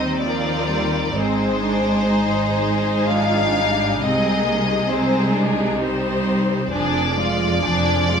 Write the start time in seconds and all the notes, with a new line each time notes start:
Already playing: D#2 D#3 G3 C4 D#4 C5 D#5
0.19 F3 D5
0.24 F4 A#4
0.69 G3
1.15 G#1 G#2 G#3 C4 D#4 G#4 C5
1.63 D4
2.09 G#3 D#4
2.58 D#4
3.08 F3 D4 F5
3.59 G3
4.01 C2 C3 G#3 C4 D#4 G#4 D#5
4.46 A#3
4.90 G#3 C4 D#4 C5
5.35 D4
5.81 G3 C4 D#4 C5
6.70 F1 F2 F3 D4 G#4 D5
7.17 G#3 F4
7.63 F1 F2 F3 D4 G#4
8.10 G#3 F4